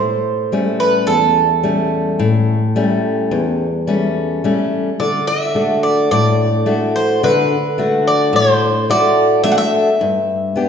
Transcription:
Already playing: A2 C5
0.52 G3 A3 C#4
0.80 B4
1.07 E2 A4
1.63 G3 A3 C#4
2.19 A2
2.76 G3 A3 C#4
3.31 E2
3.87 G3 A3 C#4
4.44 G3 A3 C#4
5.00 D3 D5
5.27 E5
5.55 A3 D4 F#4
5.83 D5
6.11 A2 D5
6.66 A3 D4 F#4
6.96 C5
7.23 D3 B4
7.78 A3 D4 F#4
8.07 D5
8.33 A2 C5
8.89 A3 D4 F#4 D5
9.44 A3 D4 F#4 E5
9.52 F#5
9.58 E5
10.01 G2
10.56 B3 D4 G4

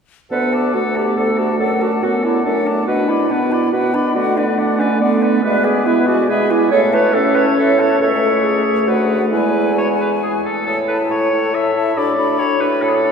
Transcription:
0.31 D2 B3 A4 B4 F#5
0.53 A4 D5 A5
0.74 D2 A3 F#4 A4 F#5
0.95 G4 D5 A5
1.17 D2 A4 F#5
1.38 F#4 D5 A5
1.59 F#2 A4 F#5
1.81 F#4 D5 A5
2.02 F#2 B3 F#4 A4 F#5
2.24 E4 D5 A5
2.44 F#2 A3 D4 A4 F#5
2.52 C#4
2.59 D4
2.67 D5 A5
2.87 B2 D4 F#4 B4 F#5
3.08 E4 D5 B5
3.30 B2 B3 D4 B4 F#5
3.52 E4 D5 B5
3.73 B2 B3 F#4 B4 F#5
3.94 D4 D5 B5
4.15 D3 A3 F#4 D5 F#5
4.37 D4 B4 D5
4.57 D3 D4 D5 F#5
4.78 C#4 B4 D5
5.00 D3 B3 D5 F#5
5.22 B4 D5
5.43 B2 G#3 B4 E5
5.64 G#4 D5 G#5
5.86 B2 B3 E4 B4 E5
6.07 F#4 D5 G#5
6.29 B2 G#3 G#4 B4 E5
6.51 E4 D5 G#5
6.71 A2 A3 A4 C#5 E5
6.93 B4 C#5 A5
7.13 A2 C#4 A4 E5
7.35 B4 C#5 A5
7.57 A2 A4 C#5 E5
7.79 A4 C#5 A5
8.01 C#2 A3 A4 C#5 E5
8.43 G#4
8.87 D2 F#4 B4 F#5
9.31 E2 G#3 E4 B4 G#5
9.77 C#5
10.00 B4
10.23 G#4
10.45 A4
10.66 A2 A4
10.88 E4 A4 B4 A5
11.10 A2 C#5
11.32 E4 A4 A5
11.53 A2 E5
11.75 E4 A4 A5
11.96 A2 D4 F#4 D5 B5
12.17 D4 F#4 B5
12.39 A2 C#5
12.60 D4 F#4 B4 B5
12.82 A2 A4
12.89 G#4
12.95 A4
13.03 D4 F#4 B5

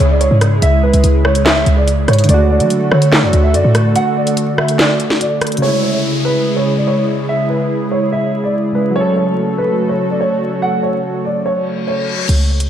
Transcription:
Already playing: C#3 G#3 E4 G#4
0.00 C#2
0.10 D5
0.21 C#5, closed hi-hat
0.31 G#2
0.41 cross-stick, closed hi-hat
0.62 C#2 E5, closed hi-hat
0.83 B4
0.93 C#2, closed hi-hat
1.04 C#2, closed hi-hat
1.25 C#5, cross-stick
1.35 closed hi-hat
1.46 E5, snare, clap
1.66 C#2, closed hi-hat
1.77 D5
1.88 closed hi-hat
2.08 G#2 C#5, cross-stick, closed hi-hat
2.13 closed hi-hat
2.19 closed hi-hat
2.24 D3, closed hi-hat
2.29 D2 D3 A3 F#4 A4 D5, closed hi-hat
2.34 F#4
2.50 D5
2.60 F#3, closed hi-hat
2.70 closed hi-hat
2.91 D3 C#5, cross-stick
3.02 closed hi-hat
3.12 snare, clap
3.23 F#2 D5
3.33 D2, closed hi-hat
3.44 E5
3.54 F#2 D5, closed hi-hat
3.64 A2
3.75 cross-stick, closed hi-hat
3.96 F#5, closed hi-hat
4.16 D5
4.27 closed hi-hat
4.37 closed hi-hat
4.58 E5, cross-stick
4.68 closed hi-hat
4.79 D5, snare, clap
5.00 closed hi-hat
5.10 snare
5.21 D5, closed hi-hat
5.41 cross-stick, closed hi-hat, open hi-hat
5.47 closed hi-hat
5.52 closed hi-hat
5.57 C#3, closed hi-hat
5.62 C#3 G#3 E4 G#4 C#5, downlifter
5.68 E4
5.83 C#5
6.25 B4
6.56 C#5
6.77 D5
6.87 C#5
7.29 E5
7.50 B4
7.92 C#5
8.12 E5
8.44 D5
8.72 C#3 G#3 B4
8.77 E4
8.90 F#3
8.95 A3 C#4 F#4 A4 C#5
9.00 A4
9.16 C#5
9.58 B4
9.89 C#5
10.10 D5
10.21 C#5
10.62 F#5
10.83 C#5
11.25 D5
11.46 C#5, reverse cymbal
11.87 C#5
12.29 C#2, closed hi-hat, crash
12.60 closed hi-hat

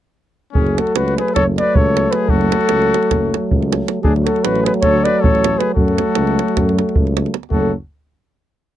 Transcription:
0.52 F#1 F#3 A3 C#4 G#4, davul low
0.67 davul high
0.78 F#4 A4, davul high
0.87 davul high
0.95 C#2 F#4 B4, davul high
1.08 davul high
1.18 G#4 B4, davul high
1.28 davul high
1.34 F#1 A4 C#5, davul high, davul low
1.58 B4 D5, davul high
1.75 C#2 A4 C#5, davul low
1.97 davul high
2.11 B4, davul high
2.15 G#4
2.28 F#1 F#4 A4, davul low
2.41 davul high
2.52 davul high
2.61 davul high
2.69 C#2, davul high
2.82 davul high
2.94 davul high
3.03 davul high
3.11 F#1, davul high, davul low
3.34 davul high
3.51 C#2, davul low
3.62 davul high
3.72 davul high
3.88 davul high
4.02 D2 F#3 A3 D4 G#4, davul low
4.16 davul high
4.24 F#4 A4, davul high
4.36 davul high
4.41 F#4 B4, davul high
4.46 A1
4.55 davul high
4.63 G#4 B4, davul high
4.74 davul high
4.81 A4 C#5, davul high, davul low
4.85 D2
5.03 B4 D5, davul high
5.20 A4 C#5
5.24 A1, davul low
5.35 davul high
5.44 davul high
5.58 G#4 B4, davul high
5.74 F#2 F#3 A3 F#4 A4, davul low
5.88 davul high
5.98 davul high
6.15 C#2, davul high
6.27 davul high
6.39 davul high
6.48 davul high
6.57 F#2, davul high, davul low
6.69 davul high
6.79 davul high
6.89 davul high
6.96 C#2, davul low
7.07 davul high
7.17 davul high
7.26 davul high
7.34 davul high
7.43 davul high
7.50 F#1 F#3 A3 F#4 A4, davul low

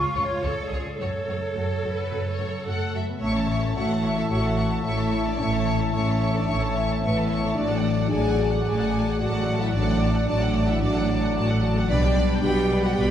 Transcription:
Already playing: C#3 F4 C#6
0.06 G#3
0.14 C#2 G#3 F4 C#5
0.23 C#5
0.42 C#2 G#3 F4 A4 C#5
0.61 D5
0.70 C#2 G#3 F4 G#4 C#5
0.79 F4
0.98 F#2 A3 F#4 A4 C#5
1.17 A3
1.26 F#2 A3 F#4 C#5
1.36 C#3
1.53 F#2 A3 F#4 A4
1.73 C#5
1.82 F#2 A3 F#4
1.92 F#4 B4
2.10 F#2 C#3 A3 F#4
2.28 A3 C#5
2.38 F#2 A3 F#4
2.47 C#3
2.66 F#2 A3 F#4 A4 F#5
2.85 C#5
2.93 F#2 A3 F#4 E5
3.03 F#4
3.09 B3 B4
3.20 A1 A2 A3 C#4 C#5 E5 A5
3.25 C#6
3.34 E3 A4 C#5 A5
3.47 A3 C#5 E5 C#6
3.62 A4 C#5 A5
3.76 A1 A2 F#4 A4 C#5 E5 F#5 C#6
3.89 E4 A4 C#5 A5
4.03 C#5 E5 C#6
4.16 E4 A4 C#5 E5 A5
4.30 A1 A2 F#4 C#5 E5 F#5 C#6
4.44 A4 C#5 A5
4.57 C#5 E5 C#6
4.71 A4 C#5 A5
4.82 A1 A2 A3 E4 C#5 E5 C#6
4.98 E3 A4 C#5 A5
5.10 A3 C#5 E5 C#6
5.25 E3 D4 A4 C#5 D5 A5
5.37 A1 A2 A3 C#4 C#5 E5 C#6
5.52 A4 C#5 A5
5.66 E3 C#5 E5 C#6
5.79 E4 A4 C#5 A5
5.92 A1 A2 A3 C#4 A4 C#5 E5 C#6
6.07 A4 C#5 A5
6.21 C#5 E5 C#6
6.34 D4 A4 C#5 D5 A5
6.47 A1 A2 A3 C#4 C#5 E5 C#6
6.61 A4 C#5 A5
6.76 C#5 E5 C#6
6.89 A4 C#5 A5
7.00 A1 A2 B3 E4
7.04 B4 C#5 E5 C#6
7.16 E3 A4 C#5 A5
7.29 A3 C#5 E5 C#6
7.43 E3 C#4 A4 C#5
7.47 A5
7.54 A1 A2 F#3 D4 F#4 D5
7.59 D5 F#5 A5
7.71 F#3 A4 F#5
7.75 F#5
7.83 A3 F#4 D5 A5
7.98 D4 A4 F#5
8.09 A1 A2 F#4 G#4 D5 G#5
8.14 A5
8.23 A4 F#5
8.28 F#5
8.38 F#4 D5 A5
8.51 F#4 A4 F#5
8.58 F#5
8.64 A1 A2 F#4 G#4 D5 G#5
8.70 A5
8.78 A4 F#5
8.84 F#5
8.91 F#4 D5
8.97 A5
9.04 A4 F#5
9.11 F#5
9.17 A1 A2 F#3 D4 F#4 D5 F#5
9.21 A2 F#4
9.25 A5
9.31 F#3 A4 F#5
9.38 F#5
9.45 A3 F#4 D5
9.52 A5
9.58 F#3 E4 A4 E5 F#5
9.66 F#5
9.71 A1 A2 F#3 F#4 D5
9.75 A2 D4 A5
9.84 A3 A4 F#5
9.89 F#5
9.98 F#3 F#4 D5
10.02 A5
10.11 D4 A4 F#5
10.15 F#5
10.26 A1 A2 F#3 F#4 D5 A5
10.31 D4
10.40 A4 F#5
10.53 F#4 D5 A5
10.65 E4 A4 E5 F#5
10.79 A1 A2 F#3 D4 F#4 D5 A5
10.95 A4 F#5
11.08 F#4 D5 A5
11.21 A4 F#5
11.35 A1 A2 D4 F#4 D5 A5
11.48 F#3 A4 F#5
11.62 A3 F#4 D5 A5
11.75 F#3 A4 F#5
11.88 B1 B2 G3 D4 B4 D5 G5 B5
11.92 D5
12.02 B3 G4 B4 G5
12.15 G3 B4 D5 B5
12.28 D4 G4 B4
12.33 G5
12.42 B1 B2 G3 G4 B4 D5 G5 B5
12.56 G4 B4 G5
12.68 B4 D5
12.73 B5
12.82 F#4 G4 B4 F#5 G5 B5
12.95 B1 B2 G3 G4 B4 D5 G5 B5

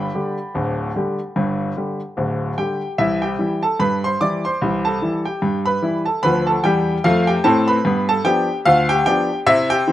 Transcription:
Already playing: D5 G5 B5
0.15 D3 G3 G4
0.55 D1 D2
0.96 D3 G3 G4
1.36 G1 G2
1.77 D3 G3 G4
2.17 D1 D2
2.58 D3 G3 G4 G5
2.98 C2 E3 E4 E5
3.22 G4 G5
3.39 E3 G3 E4
3.63 A4 A5
3.80 G2 B4 B5
4.04 C5 C6
4.21 E3 G3 E4 D5 D6
4.45 C5 C6
4.62 C2 E3
4.85 A4 A5
5.02 E3 G3 E4
5.25 G4 G5
5.42 G2
5.66 B4 B5
5.82 E3 G3 E4
6.06 A4 A5
6.23 D2 F3 B4 B5
6.47 A4 A5
6.64 E2 G3 G4 G5
7.04 F2 A3 F4 F5
7.27 G4 G5
7.44 A2 C4 A4 A5
7.68 B4 B5
7.85 G2 B3
8.09 A4 A5
8.24 F3 B3 D4 G4 G5
8.65 D2 F4 F5
8.89 G4 G5
9.06 F3 B3 D4 G4 G5
9.46 C3 E4 E5
9.70 G4 G5
9.88 E3 C4

